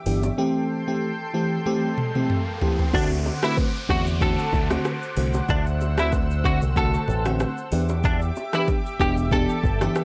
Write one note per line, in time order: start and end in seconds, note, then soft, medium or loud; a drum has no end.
0.00 0.35 G4 medium
0.00 0.34 E5 medium
0.00 0.35 D6 medium
0.06 0.29 G1 medium
0.06 0.31 E3 medium
0.06 0.31 B3 medium
0.06 0.31 D4 medium
0.06 0.31 G4 medium
0.06 open hi-hat medium
0.06 shaker soft
0.23 low bongo medium
0.23 shaker medium
0.38 0.83 E3 medium
0.38 0.83 A3 medium
0.38 0.83 C4 medium
0.38 0.84 G4 loud
0.38 2.91 A4 medium
0.38 2.91 G5 medium
0.38 2.91 C6 medium
0.38 riser medium
0.87 1.11 E3 medium
0.87 1.11 A3 medium
0.87 1.11 C4 medium
0.87 1.11 G4 medium
1.34 1.58 E3 medium
1.34 1.59 A3 medium
1.34 1.59 C4 medium
1.34 1.59 G4 medium
1.66 1.90 E3 medium
1.66 1.91 A3 medium
1.66 1.91 C4 medium
1.66 1.91 G4 loud
1.66 high tom medium
1.98 mid tom medium
2.15 2.38 E3 medium
2.15 2.39 A3 medium
2.15 2.39 C4 medium
2.15 2.39 G4 medium
2.15 mid tom medium
2.30 mid tom medium
2.61 2.86 E3 medium
2.61 2.86 A3 medium
2.61 2.86 C4 medium
2.61 2.86 G4 medium
2.61 floor tom loud
2.79 floor tom loud
2.93 3.29 D2 loud
2.93 3.39 D3 medium
2.93 3.39 A3 medium
2.93 3.39 C4 medium
2.93 3.09 D4 loud
2.93 3.39 F#4 loud
2.93 7.68 C5 medium
2.93 7.68 F#5 medium
2.93 5.46 D6 medium
2.93 kick loud
2.93 downlifter medium
2.93 low conga medium
2.93 shaker medium
3.12 shaker medium
3.26 low bongo medium
3.26 shaker medium
3.42 3.66 D3 medium
3.42 3.66 A3 medium
3.42 3.66 C4 medium
3.42 3.56 E4 medium
3.42 3.66 F#4 medium
3.42 cross-stick loud
3.42 high bongo medium
3.42 shaker loud
3.57 kick medium
3.57 high bongo medium
3.57 shaker medium
3.76 shaker medium
3.89 4.34 E2 medium
3.89 4.14 D3 medium
3.89 4.14 A3 medium
3.89 4.14 C4 medium
3.89 4.14 F#4 medium
3.89 4.05 F#4 medium
3.89 kick loud
3.89 cross-stick loud
3.89 shaker medium
4.07 shaker medium
4.21 4.46 D3 loud
4.21 4.46 A3 medium
4.21 4.46 C4 medium
4.21 4.46 F#4 loud
4.21 4.68 A4 loud
4.21 kick loud
4.21 low conga medium
4.21 shaker medium
4.39 shaker medium
4.53 4.76 D2 medium
4.53 kick medium
4.53 low conga medium
4.53 shaker medium
4.70 4.94 D3 medium
4.70 4.94 A3 medium
4.70 4.94 C4 medium
4.70 4.94 F#4 medium
4.70 cross-stick loud
4.70 low bongo medium
4.70 shaker medium
4.85 cross-stick loud
4.85 high bongo medium
4.85 shaker medium
5.02 shaker soft
5.17 5.40 C2 medium
5.17 5.42 D3 medium
5.17 5.42 A3 medium
5.17 5.42 C4 medium
5.17 5.42 F#4 medium
5.17 open hi-hat medium
5.17 shaker soft
5.34 low bongo medium
5.34 shaker medium
5.49 6.58 D2 loud
5.49 5.64 D4 loud
5.49 7.70 E6 medium
5.49 kick loud
5.49 low conga medium
5.49 shaker medium
5.66 shaker medium
5.81 low bongo medium
5.81 shaker medium
5.98 6.21 D3 medium
5.98 6.21 A3 medium
5.98 6.21 C4 medium
5.98 6.11 E4 medium
5.98 6.22 F#4 medium
5.98 cross-stick loud
5.98 high bongo medium
5.98 shaker loud
6.13 kick medium
6.13 high bongo medium
6.13 shaker medium
6.31 shaker medium
6.44 6.69 D3 medium
6.44 6.69 A3 medium
6.44 6.69 C4 medium
6.44 6.69 F#4 medium
6.44 6.60 F#4 medium
6.44 kick medium
6.44 shaker medium
6.62 6.95 C2 medium
6.62 shaker medium
6.76 7.01 D3 loud
6.76 7.01 A3 medium
6.76 7.01 C4 medium
6.76 7.01 F#4 loud
6.76 7.23 A4 loud
6.76 kick loud
6.76 low conga medium
6.76 shaker medium
6.94 shaker medium
7.08 7.43 A1 medium
7.08 low conga medium
7.08 shaker soft
7.26 7.49 D3 medium
7.26 7.49 A3 medium
7.26 7.49 C4 medium
7.26 7.49 F#4 medium
7.26 cross-stick loud
7.26 low bongo medium
7.26 shaker medium
7.40 cross-stick loud
7.40 high bongo medium
7.40 shaker medium
7.58 shaker soft
7.72 8.30 E2 loud
7.72 7.97 E3 medium
7.72 7.97 B3 medium
7.72 7.97 D4 medium
7.72 10.04 G4 medium
7.72 7.97 G4 medium
7.72 10.04 E5 medium
7.72 10.04 D6 medium
7.72 open hi-hat medium
7.72 shaker soft
7.89 low bongo medium
7.89 shaker medium
8.04 8.20 D4 loud
8.04 kick loud
8.04 low conga medium
8.04 shaker medium
8.22 shaker medium
8.36 low bongo medium
8.36 shaker medium
8.53 8.77 E3 medium
8.53 8.77 B3 medium
8.53 8.77 D4 medium
8.53 8.66 E4 medium
8.53 8.77 G4 medium
8.53 cross-stick loud
8.53 high bongo medium
8.53 shaker loud
8.68 kick medium
8.68 high bongo medium
8.68 shaker medium
8.86 shaker medium
9.00 9.45 E1 medium
9.00 9.24 E3 medium
9.00 9.24 B3 medium
9.00 9.25 D4 medium
9.00 9.25 G4 medium
9.00 9.15 G4 medium
9.00 kick medium
9.00 cross-stick loud
9.00 shaker medium
9.17 shaker medium
9.31 9.56 E3 medium
9.31 9.56 B3 medium
9.31 9.57 D4 medium
9.31 9.57 G4 loud
9.31 9.79 A4 loud
9.31 kick loud
9.31 low conga medium
9.31 shaker medium
9.49 shaker medium
9.63 9.86 G1 loud
9.63 kick medium
9.63 low conga medium
9.63 shaker soft
9.81 10.04 E3 medium
9.81 10.04 B3 medium
9.81 10.04 D4 medium
9.81 10.04 G4 medium
9.81 cross-stick loud
9.81 low bongo medium
9.81 shaker medium
9.95 cross-stick loud
9.95 high bongo medium
9.95 shaker medium